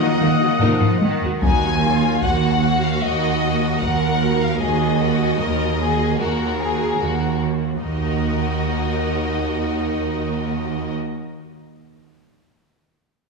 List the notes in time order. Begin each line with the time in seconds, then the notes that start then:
Already playing: D#3 A#3 D#4 A#4 D#5 F#5
0.01 D#3
0.19 D#2 D#3 D#4
0.39 D#4 F#4
0.43 D#3
0.60 D#2 F3 D#4 A#4, taiko low-mid
0.81 taiko low-mid
1.02 D#3, taiko high
1.22 D#4 F#4, taiko low
1.42 D#2 A#3 D#4 F#4 G#5, taiko
1.84 F#3 A#3 F4
2.22 D#2 A#3 F#4 F#5, taiko
2.63 A#3 F#4
2.83 F5
3.02 D#2 A#3 F#4 D#5
3.44 A#3 F#4
3.81 D#2 A#3 F#4 A#4 F#5, taiko
4.21 A#3 F#4
4.41 F5
4.60 D#2 A#3 F#4 G#4 D#5
5.00 A#3 F#4
5.40 D#2 A#3 F#4 A#4
5.80 A#3 F#4 G#4
6.19 D#2 A#3 F#4 A#4
6.59 A#3 F#4 G#4
7.00 D#2 A#3 F#4
7.41 A#3 F#4
7.81 D#2 A#3 D#4 F#4 A#4 D#5, taiko